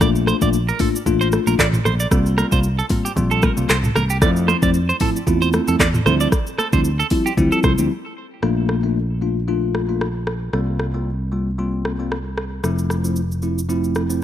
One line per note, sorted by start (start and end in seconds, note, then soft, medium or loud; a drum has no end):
0.01 0.31 A#1 loud
0.01 0.38 A3 medium
0.01 0.38 A#3 medium
0.01 0.38 D4 medium
0.01 0.38 F4 loud
0.01 0.09 D5 medium
0.01 kick loud
0.01 cross-stick loud
0.01 shaker medium
0.15 shaker medium
0.27 0.36 C5 medium
0.27 cross-stick medium
0.27 high conga medium
0.27 shaker medium
0.41 0.70 A#1 loud
0.41 0.56 A3 medium
0.41 0.56 A#3 medium
0.41 0.56 D4 medium
0.41 0.57 F4 medium
0.41 0.49 D5 medium
0.41 kick loud
0.41 shaker medium
0.53 shaker medium
0.69 0.80 A#4 medium
0.69 shaker medium
0.79 0.97 A3 medium
0.79 0.97 A#3 medium
0.79 0.97 D4 medium
0.79 0.97 F4 medium
0.79 0.88 A4 medium
0.79 kick medium
0.79 mid tom medium
0.79 open hi-hat medium
0.79 high conga medium
0.79 shaker medium
0.96 shaker loud
1.06 1.37 A1 medium
1.06 1.43 A3 medium
1.06 1.43 A#3 medium
1.06 1.43 D4 medium
1.06 1.44 F4 loud
1.06 kick medium
1.06 low conga medium
1.06 shaker medium
1.21 1.27 C5 medium
1.21 shaker medium
1.32 cross-stick medium
1.32 high conga loud
1.32 shaker medium
1.47 1.56 A#1 medium
1.47 1.62 A3 medium
1.47 1.62 A#3 medium
1.47 1.62 D4 medium
1.47 1.62 F4 medium
1.47 1.54 A#4 medium
1.47 high conga medium
1.47 shaker loud
1.59 1.79 A1 loud
1.59 1.67 D5 medium
1.59 kick medium
1.59 cross-stick loud
1.59 clap loud
1.59 shaker medium
1.73 mid tom medium
1.73 shaker medium
1.85 2.05 A#1 medium
1.85 1.93 C5 medium
1.85 cross-stick medium
1.85 high conga medium
1.85 low conga medium
1.85 shaker medium
2.00 2.06 D5 medium
2.00 shaker loud
2.11 2.42 C2 loud
2.11 2.49 G3 loud
2.11 2.49 A#3 medium
2.11 2.49 C4 medium
2.11 2.49 F4 loud
2.11 kick loud
2.11 cross-stick medium
2.11 shaker medium
2.26 shaker medium
2.38 2.46 A#4 medium
2.38 cross-stick medium
2.38 high conga medium
2.38 shaker medium
2.52 2.81 C2 loud
2.52 2.67 G3 medium
2.52 2.67 A#3 medium
2.52 2.67 C4 medium
2.52 2.67 F4 medium
2.52 2.59 C5 medium
2.52 kick loud
2.52 shaker medium
2.63 shaker medium
2.79 2.85 A4 medium
2.79 shaker soft
2.89 3.07 G3 medium
2.89 3.07 A#3 medium
2.89 3.07 C4 medium
2.89 3.07 F4 medium
2.89 kick medium
2.89 mid tom medium
2.89 open hi-hat medium
2.89 high conga medium
2.89 shaker soft
3.05 3.12 G4 medium
3.05 shaker loud
3.16 3.47 A#1 loud
3.16 3.54 G3 loud
3.16 3.54 A#3 medium
3.16 3.54 C4 medium
3.16 3.54 F4 loud
3.16 kick medium
3.16 low conga medium
3.16 shaker medium
3.31 3.43 A4 medium
3.31 shaker medium
3.42 3.51 A#4 medium
3.42 kick loud
3.42 cross-stick loud
3.42 high conga medium
3.42 shaker medium
3.57 3.66 C2 medium
3.57 3.72 G3 medium
3.57 3.72 A#3 medium
3.57 3.72 C4 medium
3.57 3.72 F4 medium
3.57 high conga medium
3.57 shaker loud
3.69 3.89 C2 loud
3.69 3.77 C5 medium
3.69 cross-stick loud
3.69 clap loud
3.69 shaker medium
3.84 mid tom loud
3.84 shaker medium
3.96 4.23 C2 medium
3.96 4.04 A#4 medium
3.96 cross-stick loud
3.96 high conga medium
3.96 low conga medium
3.96 shaker medium
4.10 4.17 G4 medium
4.10 shaker loud
4.21 4.52 F2 loud
4.21 4.59 F3 medium
4.21 4.59 A3 medium
4.21 4.59 C4 medium
4.21 4.59 E4 loud
4.21 4.30 D5 medium
4.21 kick loud
4.21 cross-stick loud
4.21 shaker medium
4.36 shaker medium
4.48 4.56 C5 medium
4.48 cross-stick medium
4.48 high conga medium
4.48 shaker medium
4.62 4.91 F2 medium
4.62 4.77 F3 medium
4.62 4.77 A3 medium
4.62 4.77 C4 medium
4.62 4.78 E4 medium
4.62 4.69 D5 medium
4.62 kick loud
4.62 shaker medium
4.74 shaker medium
4.89 4.96 C5 medium
4.89 shaker medium
5.00 5.18 F3 medium
5.00 5.18 A3 medium
5.00 5.18 C4 medium
5.00 5.18 E4 medium
5.00 5.09 A4 medium
5.00 kick medium
5.00 mid tom medium
5.00 open hi-hat medium
5.00 high conga medium
5.00 shaker soft
5.16 shaker loud
5.27 5.58 E2 loud
5.27 5.64 A3 medium
5.27 5.64 C4 medium
5.27 5.65 E4 loud
5.27 5.64 F4 medium
5.27 kick medium
5.27 low conga medium
5.27 shaker medium
5.42 5.48 C5 medium
5.42 shaker medium
5.53 cross-stick loud
5.53 high conga medium
5.53 shaker medium
5.67 5.77 F2 medium
5.67 5.82 F3 medium
5.67 5.83 A3 medium
5.67 5.83 C4 medium
5.67 5.83 E4 medium
5.67 5.75 A4 medium
5.67 high conga medium
5.67 shaker loud
5.80 5.99 E2 medium
5.80 5.88 D5 medium
5.80 kick medium
5.80 cross-stick loud
5.80 clap loud
5.80 shaker medium
5.94 mid tom loud
5.94 shaker medium
6.06 6.26 D2 loud
6.06 6.30 F3 loud
6.06 6.30 G3 medium
6.06 6.30 C4 medium
6.06 6.31 E4 loud
6.06 6.14 C5 medium
6.06 cross-stick loud
6.06 high conga medium
6.06 low conga medium
6.06 shaker medium
6.20 6.27 D5 medium
6.20 shaker loud
6.32 kick loud
6.32 cross-stick medium
6.32 shaker medium
6.47 shaker medium
6.58 6.67 A4 medium
6.58 cross-stick medium
6.58 high conga medium
6.58 shaker medium
6.73 7.02 D2 loud
6.73 6.88 F3 medium
6.73 6.88 G3 medium
6.73 6.88 C4 medium
6.73 6.88 E4 medium
6.73 6.80 C5 medium
6.73 kick loud
6.73 shaker medium
6.84 shaker medium
6.99 7.06 A4 medium
6.99 shaker medium
7.10 7.28 F3 medium
7.10 7.28 G3 medium
7.10 7.28 C4 medium
7.10 7.28 E4 medium
7.10 kick medium
7.10 open hi-hat medium
7.10 high conga medium
7.10 shaker medium
7.26 7.32 G4 medium
7.26 shaker loud
7.37 7.48 D2 medium
7.37 7.75 F3 loud
7.37 7.75 G3 medium
7.37 7.75 C4 medium
7.37 7.75 E4 loud
7.37 kick medium
7.37 low conga medium
7.37 shaker medium
7.52 7.59 A4 medium
7.52 shaker medium
7.63 7.75 C2 medium
7.63 7.72 C5 medium
7.63 kick medium
7.63 cross-stick medium
7.63 high conga medium
7.63 shaker medium
7.78 7.87 D2 medium
7.78 7.90 F3 medium
7.78 7.90 G3 medium
7.78 7.90 C4 medium
7.78 7.90 E4 medium
7.78 high conga medium
7.78 shaker loud
8.42 10.49 A#1 medium
8.42 8.80 A3 medium
8.42 8.80 A#3 medium
8.42 8.80 D4 medium
8.42 8.80 F4 loud
8.42 cross-stick medium
8.69 cross-stick medium
8.83 8.98 A3 medium
8.83 8.98 A#3 medium
8.83 8.98 D4 medium
8.83 8.99 F4 medium
9.22 9.39 A3 medium
9.22 9.39 A#3 medium
9.22 9.39 D4 medium
9.22 9.39 F4 medium
9.48 9.85 A3 medium
9.48 9.85 A#3 medium
9.48 9.86 D4 medium
9.48 9.86 F4 loud
9.75 cross-stick medium
9.89 10.04 A3 medium
9.89 10.04 A#3 medium
9.89 10.04 D4 medium
9.89 10.04 F4 medium
10.01 cross-stick medium
10.27 cross-stick medium
10.53 12.60 C2 medium
10.53 10.91 G3 medium
10.53 10.91 A#3 medium
10.53 10.91 C4 medium
10.53 10.91 F4 medium
10.53 cross-stick medium
10.79 cross-stick medium
10.94 11.09 G3 medium
10.94 11.09 A#3 medium
10.94 11.09 C4 medium
10.94 11.09 F4 medium
11.32 11.49 G3 medium
11.32 11.49 A#3 medium
11.32 11.49 C4 medium
11.32 11.49 F4 medium
11.58 11.96 G3 medium
11.58 11.96 A#3 medium
11.58 11.96 C4 medium
11.58 11.96 F4 loud
11.85 cross-stick medium
11.99 12.14 G3 medium
11.99 12.14 A#3 medium
11.99 12.14 C4 medium
11.99 12.14 F4 medium
12.12 cross-stick medium
12.38 cross-stick medium
12.63 14.23 F1 medium
12.63 13.01 F3 medium
12.63 13.01 A3 medium
12.63 13.01 C4 medium
12.63 13.01 E4 loud
12.63 cross-stick medium
12.63 shaker medium
12.78 shaker medium
12.90 cross-stick medium
12.90 shaker medium
13.04 13.19 F3 medium
13.04 13.19 A3 medium
13.04 13.19 C4 medium
13.04 13.20 E4 medium
13.04 shaker medium
13.16 shaker medium
13.32 shaker soft
13.42 13.60 F3 medium
13.42 13.60 A3 medium
13.42 13.60 C4 medium
13.42 13.60 E4 medium
13.42 shaker soft
13.58 shaker medium
13.69 14.06 F3 medium
13.69 14.06 A3 medium
13.69 14.06 C4 medium
13.69 14.07 E4 loud
13.69 shaker medium
13.84 shaker soft
13.95 cross-stick medium
13.95 shaker soft
14.09 14.23 F3 medium
14.09 14.23 A3 medium
14.09 14.23 C4 medium
14.09 14.23 E4 medium
14.09 shaker medium